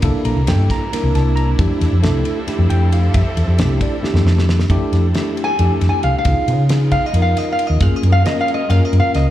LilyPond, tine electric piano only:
\new Staff \with { instrumentName = "Tine electric piano" } { \time 7/8 \key f \major \tempo 4 = 135 << { r8 bes''8 g''8 bes''4 a''8 bes''8 | r2 r8 g''8 f''8 | e''4. d''8 r4. | r2. r8 |
r2. r8 | r2. r8 | } \\ { <bes d' e' a'>4 <bes d' e' a'>4 <bes d' e' bes'>4. | <a d' e' g'>4 <a d' e' a'>4 <a d' e' g'>4. | r4 <a d' e' g'>4 <a d' e' g'>4. | <a d' e' g'>4 <a d' e' g'>4 <a d' e' g'>4. |
<ces' ees' f' aes'>4 <ces' ees' f' aes'>4 <ces' ees' f' bes'>4. | <bes des' f' aes'>4 <bes des' f' bes'>4 <bes des' f' bes'>4. | } >> }